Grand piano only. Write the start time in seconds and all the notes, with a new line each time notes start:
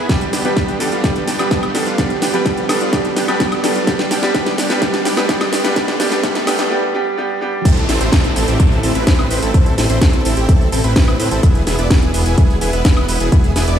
0.09 G3 B3 D4 G4
0.44 G3 B3 D4 G4
0.80 G3 B3 D4 A4
1.03 G3 B3 D4 G4
1.39 G3 B3 D4 G4
1.74 G3 B3 D4 A4
1.98 G3 B3 D4 G4
2.33 G3 B3 D4 G4
2.69 G3 B3 D4 A4
2.92 G3 B3 D4 G4
3.28 G3 B3 D4 G4
3.63 G3 B3 D4 A4
3.87 G3 B3 D4 G4
4.22 G3 B3 D4 G4
4.34 G3 B3 D4 G4
4.69 G3 B3 D4 G4
4.81 G3 B3 D4 G4
5.17 G3 B3 D4 G4
5.28 G3 B3 D4 G4
5.64 G3 B3 D4 G4
5.76 G3 B3 D4 G4
5.99 G3 B3 D4 G4
6.23 G3 B3 D4 G4
6.47 G3 B3 D4 G4
6.70 G3 B3 D4 G4
6.94 G3 B3 D4 G4
7.17 G3 B3 D4 G4
7.41 G3 B3 D4 G4